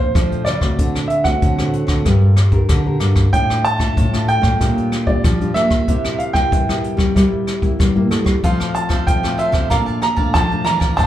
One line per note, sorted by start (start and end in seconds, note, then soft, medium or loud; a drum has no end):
0.00 0.12 A#2 medium
0.00 0.47 C5 medium
0.14 0.75 F2 medium
0.14 0.57 F3 medium
0.14 0.42 F3 medium
0.14 0.58 A3 medium
0.14 0.58 D4 medium
0.14 kick medium
0.14 cross-stick medium
0.14 closed hi-hat medium
0.32 closed hi-hat soft
0.45 0.73 C#3 medium
0.45 1.11 D5 medium
0.45 cross-stick medium
0.45 closed hi-hat soft
0.61 1.05 A3 medium
0.61 1.05 C4 medium
0.61 1.05 F#4 medium
0.61 kick medium
0.61 cross-stick medium
0.79 1.33 D3 medium
0.79 1.39 D3 medium
0.79 kick medium
0.79 closed hi-hat medium
0.95 cross-stick medium
0.95 closed hi-hat soft
1.08 1.25 E5 medium
1.08 closed hi-hat soft
1.24 1.53 A3 medium
1.24 1.53 C4 medium
1.24 1.53 F#4 medium
1.24 2.17 F#5 medium
1.24 kick medium
1.24 cross-stick medium
1.42 2.03 A2 medium
1.42 1.83 D3 medium
1.42 kick medium
1.42 closed hi-hat medium
1.59 2.01 A3 medium
1.59 2.01 C4 medium
1.59 2.02 F#4 medium
1.59 cross-stick medium
1.59 closed hi-hat soft
1.73 closed hi-hat soft
1.87 2.02 D3 medium
1.87 kick medium
1.87 cross-stick medium
1.87 closed hi-hat soft
2.05 2.60 G2 loud
2.05 2.66 G3 medium
2.05 2.36 D4 medium
2.05 2.36 G4 medium
2.05 2.36 A#4 medium
2.05 kick medium
2.05 cross-stick medium
2.05 closed hi-hat medium
2.37 cross-stick medium
2.37 closed hi-hat soft
2.52 2.80 D4 medium
2.52 2.80 G4 medium
2.52 2.80 A#4 medium
2.52 kick medium
2.52 closed hi-hat soft
2.69 3.30 D3 medium
2.69 2.97 D3 medium
2.69 kick medium
2.69 cross-stick medium
2.69 closed hi-hat medium
2.86 3.28 D4 medium
2.86 3.29 G4 medium
2.86 3.29 A#4 medium
3.00 3.28 G2 medium
3.00 cross-stick medium
3.00 closed hi-hat medium
3.16 kick medium
3.16 cross-stick medium
3.16 closed hi-hat soft
3.33 3.94 A2 medium
3.33 3.87 A2 medium
3.33 3.63 A3 medium
3.33 3.63 D4 medium
3.33 3.63 F4 medium
3.33 3.66 G5 loud
3.33 kick medium
3.33 closed hi-hat medium
3.50 cross-stick medium
3.65 4.31 A5 loud
3.65 closed hi-hat medium
3.79 4.07 A3 medium
3.79 4.07 D4 medium
3.79 4.07 F4 medium
3.79 kick medium
3.79 cross-stick medium
3.79 closed hi-hat soft
3.97 4.57 A2 soft
3.97 4.38 A2 medium
3.97 kick medium
3.97 closed hi-hat medium
4.13 4.56 A3 medium
4.13 4.56 D4 medium
4.13 4.56 F4 medium
4.13 cross-stick medium
4.13 closed hi-hat soft
4.28 5.11 G5 loud
4.28 closed hi-hat soft
4.42 4.57 A2 medium
4.42 kick medium
4.42 cross-stick medium
4.60 5.21 A#2 medium
4.60 5.15 A#2 loud
4.60 5.03 G3 medium
4.60 5.03 D4 medium
4.60 5.04 F4 medium
4.60 kick medium
4.60 cross-stick medium
4.60 closed hi-hat medium
4.78 closed hi-hat soft
4.92 cross-stick medium
4.92 closed hi-hat soft
5.07 5.35 G3 medium
5.07 5.35 D4 medium
5.07 5.35 F4 medium
5.07 5.52 D5 medium
5.07 kick medium
5.24 5.85 F3 medium
5.24 5.52 F3 medium
5.24 kick medium
5.24 cross-stick medium
5.24 closed hi-hat medium
5.41 5.83 G3 medium
5.41 5.83 D4 medium
5.41 5.84 F4 medium
5.41 closed hi-hat soft
5.54 5.83 A#3 medium
5.54 6.21 E5 loud
5.54 cross-stick medium
5.54 closed hi-hat soft
5.71 kick medium
5.71 cross-stick medium
5.88 6.42 C3 medium
5.88 6.49 C3 medium
5.88 6.31 G3 medium
5.88 6.31 A#3 medium
5.88 6.31 E4 medium
5.88 kick medium
5.88 closed hi-hat medium
6.05 cross-stick medium
6.05 closed hi-hat soft
6.18 6.34 F5 medium
6.18 closed hi-hat soft
6.33 6.62 G3 medium
6.33 6.62 A#3 medium
6.33 6.62 E4 medium
6.33 7.26 G5 medium
6.33 kick medium
6.33 cross-stick medium
6.52 7.12 G2 medium
6.52 6.93 C3 medium
6.52 kick medium
6.52 closed hi-hat medium
6.68 7.11 G3 medium
6.68 7.11 A#3 medium
6.68 7.11 E4 medium
6.68 cross-stick medium
6.68 closed hi-hat soft
6.84 closed hi-hat soft
6.97 7.12 G3 medium
6.97 kick medium
6.97 cross-stick medium
6.97 closed hi-hat soft
7.15 7.76 C3 medium
7.15 7.45 G3 medium
7.15 7.70 G3 loud
7.15 7.45 A#3 medium
7.15 7.46 E4 medium
7.15 kick medium
7.15 cross-stick medium
7.15 closed hi-hat medium
7.47 cross-stick medium
7.47 closed hi-hat soft
7.62 7.89 G3 medium
7.62 7.90 A#3 medium
7.62 7.90 E4 medium
7.62 kick medium
7.62 closed hi-hat soft
7.79 8.40 G2 medium
7.79 7.93 G3 medium
7.79 kick medium
7.79 cross-stick medium
7.79 closed hi-hat medium
7.95 8.38 G3 medium
7.95 8.38 A#3 medium
7.95 8.10 A#3 medium
7.95 8.38 E4 medium
8.11 8.24 A3 medium
8.11 cross-stick medium
8.11 closed hi-hat medium
8.24 8.40 G3 medium
8.24 kick medium
8.24 cross-stick medium
8.24 closed hi-hat soft
8.43 9.04 F3 medium
8.43 8.98 F3 medium
8.43 8.73 A3 medium
8.43 8.73 C4 medium
8.43 8.58 F4 medium
8.43 8.74 F4 medium
8.43 8.59 A4 medium
8.43 8.59 C5 medium
8.43 8.77 F5 medium
8.43 8.58 F5 medium
8.43 kick medium
8.43 closed hi-hat medium
8.60 8.73 A4 soft
8.60 8.74 C5 soft
8.60 8.74 F5 soft
8.60 cross-stick medium
8.74 9.05 A5 medium
8.74 muted cavaquinho stroke soft
8.74 closed hi-hat medium
8.89 9.17 A3 medium
8.89 9.17 C4 medium
8.89 9.18 F4 medium
8.89 9.22 A4 medium
8.89 9.21 C5 medium
8.89 9.21 F5 medium
8.89 kick medium
8.89 cross-stick medium
8.89 closed hi-hat soft
9.07 9.68 C3 soft
9.07 9.48 F3 medium
9.07 9.37 G5 medium
9.07 kick medium
9.07 closed hi-hat medium
9.23 9.66 A3 medium
9.23 9.66 C4 medium
9.23 9.67 F4 medium
9.23 9.37 A4 soft
9.23 9.38 C5 soft
9.23 9.38 F5 soft
9.23 cross-stick medium
9.23 closed hi-hat soft
9.38 9.53 F4 soft
9.38 9.53 A4 medium
9.38 9.52 C5 medium
9.38 9.72 E5 medium
9.38 9.51 F5 medium
9.38 closed hi-hat soft
9.52 9.67 C3 medium
9.52 9.69 A4 medium
9.52 9.69 C5 medium
9.52 9.68 F5 medium
9.52 kick medium
9.52 cross-stick medium
9.70 10.25 A#2 medium
9.70 10.32 A#2 medium
9.70 10.01 F3 medium
9.70 10.01 A3 medium
9.70 10.01 D4 medium
9.70 9.85 A#4 medium
9.70 9.85 D5 medium
9.70 9.78 F5 medium
9.70 9.86 F5 medium
9.70 9.85 A5 medium
9.70 kick medium
9.70 cross-stick medium
9.70 closed hi-hat medium
9.86 10.01 D5 soft
9.86 10.01 F5 soft
9.86 10.01 A5 soft
9.86 closed hi-hat soft
10.01 10.36 A#5 medium
10.01 muted cavaquinho stroke soft
10.01 cross-stick medium
10.01 closed hi-hat soft
10.16 10.45 F3 medium
10.16 10.45 A3 medium
10.16 10.46 D4 medium
10.16 10.33 D5 medium
10.16 10.33 F5 medium
10.16 10.32 A5 medium
10.16 kick medium
10.33 10.96 F2 medium
10.33 10.62 F3 medium
10.33 10.63 A#4 soft
10.33 10.64 D5 medium
10.33 10.65 F5 soft
10.33 10.67 A5 loud
10.33 10.66 A5 medium
10.33 kick medium
10.33 cross-stick medium
10.33 closed hi-hat medium
10.51 10.94 F3 medium
10.51 10.94 A3 medium
10.51 10.94 D4 medium
10.51 closed hi-hat soft
10.64 10.93 E3 medium
10.64 10.80 A#4 medium
10.64 10.81 D5 medium
10.64 10.80 F5 medium
10.64 10.79 A5 medium
10.64 10.98 A#5 medium
10.64 cross-stick medium
10.64 closed hi-hat soft
10.80 10.97 D5 soft
10.80 10.96 F5 soft
10.80 10.96 A5 medium
10.80 kick medium
10.80 cross-stick medium
10.97 11.07 A2 medium
10.97 11.07 F3 medium
10.97 11.07 C4 medium
10.97 11.07 D4 medium
10.97 11.07 A4 medium
10.97 11.07 C5 medium
10.97 11.07 F5 medium
10.97 11.07 A5 loud
10.97 kick medium
10.97 closed hi-hat medium